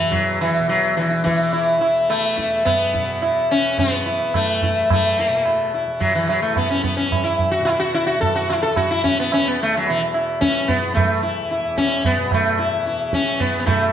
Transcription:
Already playing: tanpura B2 E3, sitar E3
0.01 tanpura E2
0.11 sitar F#3, tabla ge
0.41 sitar E3, tabla na
0.59 tanpura B2
0.69 sitar F#3
0.97 sitar E3, tabla te
1.11 tabla te
1.19 tanpura E3
1.24 sitar E3, tabla ke
1.39 tabla te
1.53 sitar E4, tabla tin
1.78 tanpura E3, sitar E4
1.82 tabla na
2.10 sitar A3, tabla na
2.37 tanpura E2, sitar E4, tabla ke
2.65 sitar B3, tabla na, tabla ge
2.93 tanpura B2, sitar E4, tabla ge
3.22 sitar E4, tabla na
3.51 tanpura E3, sitar C#4
3.78 sitar B3, tabla tin, tabla ge
4.06 sitar E4, tabla na
4.11 tanpura E3
4.34 sitar A3, tabla na, tabla ge
4.62 sitar E4, tabla ge
4.70 tanpura E2
4.90 sitar A3, tabla na, tabla ge
5.19 sitar E4
5.28 tanpura B2
5.45 tabla na
5.74 sitar E4
5.87 tanpura E3
6.00 sitar F#3, tabla tin, tabla ge
6.15 sitar E3
6.29 sitar F#3, tabla na
6.42 tanpura E3, sitar A3
6.56 sitar B3, tabla na, tabla ge
6.70 sitar C#4
6.83 sitar B3, tabla ge
6.97 sitar C#4
7.02 tanpura E2
7.12 tabla na, tabla ge
7.24 sitar E4
7.39 tabla ge
7.51 sitar F#4
7.59 tanpura B2
7.65 sitar E4, tabla na
7.80 sitar F#4
7.94 sitar E4
8.07 sitar F#4
8.17 tanpura E3, sitar A4
8.22 tabla tin, tabla ge
8.36 sitar F#4
8.50 sitar E4, tabla na
8.63 sitar A4
8.75 tanpura E3, sitar F#4, tabla na, tabla ge
8.91 sitar E4
9.04 sitar C#4, tabla ge
9.20 sitar B3
9.32 tanpura E2, sitar C#4, tabla na
9.48 sitar B3
9.63 sitar A3
9.77 sitar F#3
9.87 tanpura B2, sitar E3, tabla na
10.14 sitar E4, tabla na
10.41 sitar C#4, tabla ke
10.45 tanpura E3
10.68 sitar B3, tabla tin, tabla ge
10.95 sitar A3, tabla na, tabla ge
11.04 tanpura E3
11.23 sitar E4
11.51 sitar E4
11.60 tanpura E2
11.77 sitar C#4, tabla ke
12.05 sitar B3, tabla tin, tabla ge
12.16 tanpura B2
12.31 sitar A3, tabla na, tabla ge
12.59 sitar E4
12.74 tanpura E3
12.86 sitar E4
13.13 sitar C#4, tabla ke
13.30 tanpura E3
13.40 sitar B3, tabla tin, tabla ge
13.60 sitar B3
13.66 tanpura B2, sitar A3 E4, tabla na, tabla ge

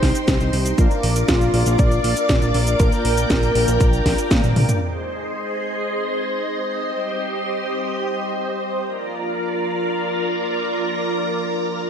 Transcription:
Already playing: analog polysynth C4 D#4 G4 C5, string machine D#4 C5 G5 C6
0.03 analog synth bass C2, kick, snare, open hi-hat
0.15 closed hi-hat, cabasa
0.28 analog synth bass C2, kick, snare, closed hi-hat, cabasa
0.40 analog synth bass C2, closed hi-hat, cabasa
0.53 analog synth bass C2, open hi-hat
0.66 closed hi-hat, cabasa
0.78 analog synth bass A#1, analog polysynth A#3 D4 F4 A#4, string machine A#4 D5 F5 D6, kick, closed hi-hat, cabasa
0.91 closed hi-hat, cabasa
1.03 analog synth bass A#1, open hi-hat
1.16 closed hi-hat, cabasa
1.29 analog synth bass A#1, analog synth lead F4, kick, snare, closed hi-hat, cabasa
1.41 closed hi-hat, cabasa
1.54 analog synth bass A#1, analog polysynth A#3 D4 F4 A#4, open hi-hat
1.66 analog synth bass A#1, closed hi-hat, cabasa
1.79 analog synth bass A#1, analog synth lead D5, kick, closed hi-hat, cabasa
1.91 closed hi-hat, cabasa
2.04 analog synth bass A#1, open hi-hat
2.17 closed hi-hat, cabasa
2.29 analog synth bass A#1, kick, snare, closed hi-hat, cabasa
2.42 analog synth bass A#1, closed hi-hat, cabasa
2.54 analog synth bass A#1, open hi-hat
2.67 closed hi-hat, cabasa
2.80 analog synth bass A#1, analog polysynth A#3 D4 F4 A#4, analog synth lead A#4, string machine G5, kick, closed hi-hat, cabasa
2.92 closed hi-hat, cabasa
3.05 analog synth bass A#1, open hi-hat
3.18 closed hi-hat, cabasa
3.30 analog synth bass A#1, kick, snare, closed hi-hat, cabasa
3.43 closed hi-hat, cabasa
3.55 analog synth bass A#1, analog polysynth A#3 D4 F4 A#4, open hi-hat
3.68 analog synth bass A#1, closed hi-hat, cabasa
3.81 analog synth bass A#1, kick, closed hi-hat, cabasa
3.93 closed hi-hat, cabasa
4.06 analog synth bass A#1, kick, snare, open hi-hat
4.18 closed hi-hat, cabasa
4.31 analog synth bass A#2, kick, snare, closed hi-hat, high tom, cabasa
4.44 analog synth bass A#1, closed hi-hat, high tom, cabasa
4.56 analog synth bass A#1, open hi-hat, mid tom
4.69 closed hi-hat, mid tom, cabasa
4.81 string machine G#4 C5 D#5 C6
6.83 string machine G4 C6
8.84 string machine F4 A#4 D5 A#5

